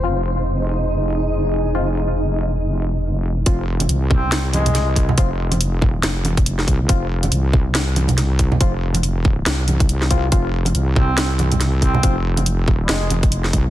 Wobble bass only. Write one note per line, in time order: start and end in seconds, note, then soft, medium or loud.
0.00 3.45 F1 medium
3.46 3.88 F1 loud
3.89 5.16 C2 loud
5.18 5.78 F1 medium
5.78 6.02 E1 medium
6.03 6.66 F1 loud
6.68 6.88 C2 medium
6.89 7.31 F1 loud
7.32 8.59 C2 loud
8.61 9.45 F1 loud
9.46 10.31 C2 loud
10.32 10.74 F1 loud
10.75 12.02 C2 loud
12.03 12.63 F1 loud
12.63 12.88 E1 loud
12.89 13.52 F1 loud
13.53 13.70 C2 loud